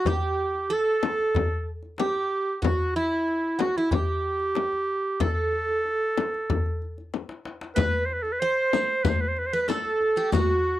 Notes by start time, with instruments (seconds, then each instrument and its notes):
0.05 bouzouki G4, clarinet G4, darbuka dum, frame drum
0.39 darbuka ka
0.55 darbuka ka
0.70 bouzouki A4, clarinet A4, darbuka ka
1.03 darbuka tek, frame drum
1.19 darbuka ka
1.35 darbuka dum, frame drum
1.83 darbuka ka
1.98 bouzouki G4, clarinet G4, darbuka tek, frame drum
2.15 darbuka ka
2.62 bouzouki F#4, clarinet F#4, darbuka dum, frame drum
2.95 bouzouki E4, clarinet E4, darbuka ka
3.12 darbuka ka
3.28 darbuka ka
3.59 bouzouki F#4, clarinet F#4, darbuka tek, frame drum
3.75 clarinet E4, bouzouki E4, darbuka ka
3.91 bouzouki G4, clarinet G4, darbuka dum, frame drum
4.40 darbuka ka
4.55 darbuka tek, frame drum
4.72 darbuka ka
5.20 bouzouki A4, clarinet A4, darbuka dum, frame drum
5.53 darbuka ka
5.68 darbuka ka
5.85 darbuka ka
6.17 darbuka tek, frame drum
6.34 darbuka ka
6.50 darbuka dum, frame drum
6.66 darbuka ka
6.82 darbuka ka
6.98 darbuka ka
7.14 darbuka tek, frame drum
7.29 darbuka ka
7.45 darbuka tek
7.61 darbuka ka
7.76 bouzouki B4, clarinet B4, riq, darbuka dum, frame drum
8.06 clarinet C5, darbuka ka
8.14 clarinet B4
8.23 clarinet A4, darbuka ka
8.32 clarinet B4
8.40 clarinet C5, bouzouki C5, darbuka ka
8.73 riq, frame drum
9.04 clarinet B4, riq, darbuka dum, frame drum
9.09 clarinet C5
9.21 clarinet B4, darbuka ka
9.28 clarinet C5
9.37 clarinet B4, darbuka ka
9.47 clarinet C5
9.53 bouzouki B4, clarinet B4, riq
9.62 clarinet B4
9.68 bouzouki A4, clarinet A4, riq, darbuka tek, frame drum
9.85 darbuka ka
10.01 darbuka ka
10.16 bouzouki G4, riq, darbuka ka
10.32 clarinet F#4, bouzouki F#4, riq, darbuka dum, frame drum
10.65 darbuka ka